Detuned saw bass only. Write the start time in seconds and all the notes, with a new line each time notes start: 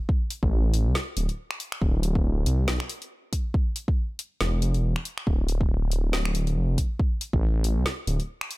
0.43 A1
0.86 C2
1.17 D1
1.82 D1
2.46 C2
2.68 B1
4.41 E1
4.62 F1
4.74 E1
5.27 D1
6.56 F1
7.33 A1
7.77 C2
8.07 D1